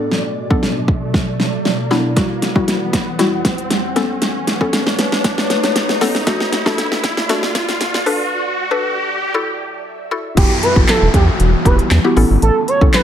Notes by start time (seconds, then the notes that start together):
Already playing: B2 F#3 B3 D4 A4 D5, riser
0.12 snare
0.50 B3 D4 A4, kick
0.63 snare
0.88 kick
1.14 kick, snare
1.40 snare
1.65 snare
1.91 B3 D4 E4, snare
2.16 E2 E3 G3 E4 F#4 F#5, kick, snare, closed hi-hat
2.42 snare, closed hi-hat
2.56 G3 E4 F#4, kick
2.68 snare, closed hi-hat
2.93 kick, snare, closed hi-hat
3.19 G3 E4 F#4, snare, closed hi-hat
3.45 kick, snare, closed hi-hat
3.58 closed hi-hat
3.70 snare, closed hi-hat
3.96 A2 A3 B3 C#4 A4 B4 C#5, snare, closed hi-hat
4.22 snare, closed hi-hat
4.47 snare, closed hi-hat
4.61 B3 C#4 A4, kick
4.73 snare, closed hi-hat
4.87 snare
4.99 snare, closed hi-hat
5.12 snare
5.24 kick, snare, closed hi-hat
5.38 snare
5.50 snare, closed hi-hat
5.63 snare, closed hi-hat
5.76 snare, closed hi-hat
5.89 snare
6.01 B3 C#4 A4, snare, open hi-hat
6.15 snare
6.27 A2 A3 D4 F#4 A4 D5, kick, snare, closed hi-hat
6.40 snare
6.52 snare, closed hi-hat
6.66 A3 D4 F#4 A4, kick, snare
6.78 snare, closed hi-hat
6.92 snare
7.04 kick, snare, closed hi-hat
7.17 snare
7.29 A3 D4 F#4 A4, snare, closed hi-hat
7.43 snare
7.55 kick, snare, closed hi-hat
7.69 snare, closed hi-hat
7.81 snare, closed hi-hat
7.94 snare
8.06 B2 F#3 D4 A4 B4, open hi-hat
8.71 D4 A4 B4
9.34 E4 F#4 A4
10.11 E4 F#4 A4
10.37 E1 E3 G3 B3 E4 F#4 G4, kick, closed hi-hat, crash, downlifter
10.63 B4, closed hi-hat
10.76 G1 B3 E4 F#4 A4, kick
10.88 A4, snare, clap, closed hi-hat
11.02 E1
11.14 E2 G4, kick, closed hi-hat
11.40 E1, closed hi-hat
11.65 E1 B3 E4 F#4 G4 B4, kick, closed hi-hat
11.79 closed hi-hat
11.91 E2, snare, clap, closed hi-hat
12.04 B3 E4 F#4 G4
12.16 A1 A3 B3 C#4 E4 A4, open hi-hat
12.30 G1
12.42 A1 A4, closed hi-hat
12.68 C#5, closed hi-hat
12.81 C#2 B3 C#4 E4 A4, kick
12.94 B4, snare, clap, closed hi-hat